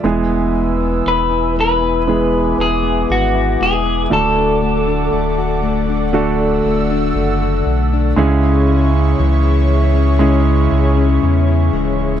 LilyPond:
<<
  \new Staff \with { instrumentName = "Analog synth pad" } { \time 4/4 \key e \mixolydian \tempo 4 = 59 << { e'''2 d'''2~ | d'''2 e'''2 | cis'''1 | } \\ { <b' e'' gis''>1 | <a' d'' fis''>1 | <gis' cis'' e''>1 | } >> }
  \new Staff \with { instrumentName = "Clean electric guitar" } { \time 4/4 \key e \mixolydian r4 b'8 b'4 gis'8 fis'8 gis'8 | a'2 r2 | r1 | }
  \new Staff \with { instrumentName = "Grand piano" } { \time 4/4 \key e \mixolydian <gis b e' gis'>2 <gis b e' gis'>2 | <a d' fis' a'>2 <a d' fis' a'>2 | <gis cis' e' gis'>2 <gis cis' e' gis'>2 | }
  \new Staff \with { instrumentName = "Grand piano" } { \clef bass \time 4/4 \key e \mixolydian e4. r2 r8 | d4. r2 r8 | cis4. r2 r8 | }
  \new Staff \with { instrumentName = "Steel-string acoustic guitar" } { \time 4/4 \key e \mixolydian e,16 b16 gis16 b16 e16 e'16 gis16 b16 e,16 b16 gis16 b16 e16 e'16 gis16 b16 | d16 d'16 a16 d'16 a16 fis'16 a16 d'16 d16 d'16 a16 d'16 a16 fis'16 a16 d'16 | cis16 cis'16 gis16 cis'16 e16 e'16 gis16 cis'16 cis16 cis'16 gis16 cis'16 e16 e'16 gis16 cis'16 | }
  \new Staff \with { instrumentName = "Sub bass" } { \clef bass \time 4/4 \key e \mixolydian e,,4 e,,4. e,,8 gis,,8 e,,8 | d,,4 d,,4. d,,8 fis,,8 b,,8 | cis,4 cis,4. cis,8 e,8 d,,8 | }
>>